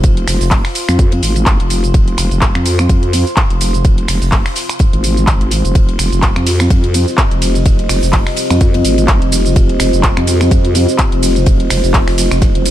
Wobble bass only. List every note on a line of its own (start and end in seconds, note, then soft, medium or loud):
0.04 0.26 F1 loud
0.28 0.39 F1 loud
0.41 0.63 F1 loud
0.89 1.21 F2 loud
1.23 1.58 G#1 loud
1.60 1.93 F1 loud
1.94 2.16 F1 loud
2.18 2.29 F1 loud
2.31 2.53 F1 loud
2.55 2.88 F2 medium
2.89 3.24 F2 loud
3.50 3.83 F1 loud
3.85 4.07 F1 loud
4.08 4.20 F1 medium
4.22 4.44 F1 loud
4.93 5.26 G#1 medium
5.28 5.63 G#1 loud
5.65 5.73 F1 loud
5.75 5.97 F1 loud
5.99 6.10 F1 loud
6.12 6.34 F1 loud
6.36 6.69 F2 medium
6.70 7.05 F2 loud
7.31 7.64 F1 loud
7.66 7.88 F1 loud
7.89 8.01 F1 loud
8.03 8.25 F1 loud
8.50 8.83 F2 loud
8.85 9.20 G#1 loud
9.22 9.54 F1 loud
9.56 9.78 F1 loud
9.80 9.91 F1 loud
9.93 10.15 F1 loud
10.17 10.50 F2 medium
10.51 10.86 F2 loud
11.12 11.45 F1 loud
11.47 11.69 F1 loud
11.70 11.82 F1 medium
11.84 12.05 F1 loud
12.08 12.29 F1 medium
12.31 12.53 F1 loud
12.55 12.71 F1 loud